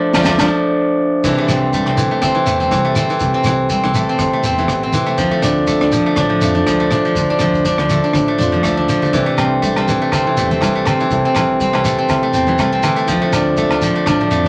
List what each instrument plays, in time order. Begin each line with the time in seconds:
Already playing: guzheng F3 A3 D4
0.13 fingered electric bass D2, guzheng F3 A3 D4, steel-string acoustic guitar A3 D4 F4, kick, snare, high conga, low agogo, shekere
0.23 fingered electric bass D2, guzheng F3 A3, steel-string acoustic guitar A3 D4 F4, kick, snare, high conga, low agogo, shekere
0.29 guzheng D4
0.38 fingered electric bass D2, guzheng F3 A3 D4, steel-string acoustic guitar A3 D4 F4, kick, snare, high conga, low agogo, shekere
1.24 fingered electric bass C2, steel-string acoustic guitar C3 E4 G4, guzheng E3, kick, crash, shekere
1.28 steel-string acoustic guitar A4
1.38 guzheng A3
1.48 fingered electric bass C2, guzheng C4, cross-stick, closed hi-hat, high conga, shekere
1.73 steel-string acoustic guitar G3, guzheng A3, kick, shekere
1.86 fingered electric bass C2, guzheng C4, cross-stick
1.97 guzheng E3, steel-string acoustic guitar A4, closed hi-hat, high conga, low conga, shekere
2.11 guzheng A3
2.22 steel-string acoustic guitar C3 E4, guzheng C4, kick, cross-stick, low conga, shekere
2.35 guzheng E3
2.46 fingered electric bass E2, guzheng A3, steel-string acoustic guitar G4, closed hi-hat, shekere
2.60 guzheng C4, high conga, shekere
2.71 fingered electric bass C2, guzheng E3, steel-string acoustic guitar G3, kick, cross-stick, shekere
2.85 guzheng A3
2.95 guzheng C4, steel-string acoustic guitar E4, cross-stick, closed hi-hat, low conga, shekere
3.09 guzheng E3, shekere
3.20 fingered electric bass C2, steel-string acoustic guitar C3 E4 G4 A4, kick, shekere
3.34 guzheng C4
3.44 fingered electric bass C2, guzheng E3, cross-stick, closed hi-hat, high conga, shekere
3.69 steel-string acoustic guitar G3, guzheng C4, kick, shekere
3.84 fingered electric bass C2, guzheng E3, cross-stick
3.94 guzheng A3, steel-string acoustic guitar A4, closed hi-hat, high conga, low conga, shekere
4.09 guzheng C4
4.19 steel-string acoustic guitar C3 E4, kick, cross-stick, low conga, shekere
4.33 guzheng A3
4.43 fingered electric bass E2, guzheng C4, steel-string acoustic guitar G4, closed hi-hat, shekere
4.58 guzheng E3, high conga, shekere
4.68 fingered electric bass A1, steel-string acoustic guitar B2, kick, cross-stick, shekere
4.83 guzheng C4
4.92 steel-string acoustic guitar C3, guzheng E3, closed hi-hat, low conga, shekere
5.06 guzheng A3, shekere
5.18 fingered electric bass D2, steel-string acoustic guitar D3 F4 A4, guzheng F3, muted steel-string acoustic guitar stroke, kick, shekere
5.31 guzheng A3
5.42 fingered electric bass D2, guzheng D4, cross-stick, closed hi-hat, high conga, shekere
5.67 guzheng A3, steel-string acoustic guitar A3, kick, shekere
5.81 fingered electric bass D2, guzheng D4, cross-stick
5.92 guzheng F3, steel-string acoustic guitar A4, closed hi-hat, high conga, low conga, shekere
6.06 guzheng A3
6.16 steel-string acoustic guitar A2 D4, guzheng D4, kick, cross-stick, low conga, shekere
6.30 guzheng F3
6.41 fingered electric bass F2, guzheng A3, steel-string acoustic guitar F4, closed hi-hat, shekere
6.55 guzheng D4, high conga, shekere
6.66 fingered electric bass D2, guzheng F3, steel-string acoustic guitar A3, kick, cross-stick, shekere
6.80 guzheng A3
6.91 guzheng D4, steel-string acoustic guitar D4, cross-stick, closed hi-hat, low conga, shekere
7.05 guzheng F3, shekere
7.15 fingered electric bass D2, steel-string acoustic guitar D3 D4 F4 A4, kick, shekere
7.30 guzheng D4
7.39 fingered electric bass D2, guzheng F3, cross-stick, closed hi-hat, high conga, low conga, shekere
7.53 kick, shekere
7.65 steel-string acoustic guitar A3, guzheng D4, kick, shekere
7.78 fingered electric bass D2, guzheng F3, cross-stick
7.89 guzheng A3, steel-string acoustic guitar A4, closed hi-hat, high conga, low conga, shekere
8.04 guzheng D4, shekere
8.13 steel-string acoustic guitar A2 D4, kick, cross-stick, low conga, shekere
8.28 guzheng A3
8.38 fingered electric bass F2, guzheng D4, steel-string acoustic guitar F4, closed hi-hat, high conga, shekere
8.52 guzheng F3, high conga, shekere
8.63 fingered electric bass D2, guzheng A3, steel-string acoustic guitar A3, kick, cross-stick, shekere
8.77 guzheng D4, high conga
8.88 guzheng F3, steel-string acoustic guitar D4, closed hi-hat, low conga, shekere
9.02 guzheng A3, low conga, shekere
9.13 fingered electric bass C2, steel-string acoustic guitar C3 E4 G4 A4, guzheng E3, kick, shekere
9.26 guzheng A3
9.37 fingered electric bass C2, guzheng C4, cross-stick, closed hi-hat, high conga, low agogo, shekere
9.62 steel-string acoustic guitar G3, guzheng A3, kick, shekere
9.76 fingered electric bass C2, guzheng C4, cross-stick, low agogo
9.88 guzheng E3, steel-string acoustic guitar A4, closed hi-hat, high conga, low conga, shekere
10.02 guzheng A3
10.12 steel-string acoustic guitar C3 E4, guzheng C4, kick, cross-stick, low conga, low agogo, shekere
10.27 guzheng E3
10.37 fingered electric bass E2, guzheng A3, steel-string acoustic guitar G4, closed hi-hat, shekere
10.51 guzheng C4, high conga, shekere
10.61 fingered electric bass C2, guzheng E3, steel-string acoustic guitar G3, kick, cross-stick, low agogo, shekere
10.75 guzheng A3
10.86 guzheng C4, steel-string acoustic guitar E4, cross-stick, closed hi-hat, low conga, low agogo, shekere
11.00 guzheng E3, shekere
11.11 fingered electric bass C2, steel-string acoustic guitar C3 E4 G4 A4, kick, shekere
11.25 guzheng C4
11.35 fingered electric bass C2, guzheng E3, cross-stick, closed hi-hat, high conga, low agogo, shekere
11.59 steel-string acoustic guitar G3, guzheng C4, kick, shekere
11.73 fingered electric bass C2, guzheng E3, cross-stick, low agogo
11.84 guzheng A3, steel-string acoustic guitar A4, closed hi-hat, high conga, shekere
11.99 guzheng C4
12.09 steel-string acoustic guitar C3 E4, kick, cross-stick, low conga, low agogo, shekere
12.23 guzheng A3
12.33 fingered electric bass E2, guzheng C4, steel-string acoustic guitar G4, closed hi-hat, shekere
12.47 guzheng E3, high conga, shekere
12.58 fingered electric bass C2, steel-string acoustic guitar G3, guzheng A3, kick, cross-stick, low agogo, shekere
12.72 guzheng C4
12.83 guzheng E3, steel-string acoustic guitar E4, closed hi-hat, low conga, low agogo, shekere
12.96 guzheng A3, shekere
13.08 fingered electric bass D2, steel-string acoustic guitar D3 D4 F4 A4, guzheng F3, kick, shekere
13.22 guzheng A3
13.32 fingered electric bass D2, guzheng D4, cross-stick, closed hi-hat, low agogo, shekere
13.57 steel-string acoustic guitar A3, guzheng A3, kick, shekere
13.69 fingered electric bass D2, guzheng D4, cross-stick, low agogo
13.81 guzheng F3, steel-string acoustic guitar A4, closed hi-hat, high conga, low conga, shekere
13.96 guzheng A3
14.06 steel-string acoustic guitar A2 D4, guzheng D4, kick, cross-stick, low conga, low agogo, shekere
14.21 guzheng F3
14.31 fingered electric bass F2, guzheng A3, steel-string acoustic guitar F4, closed hi-hat, shekere
14.44 high conga, shekere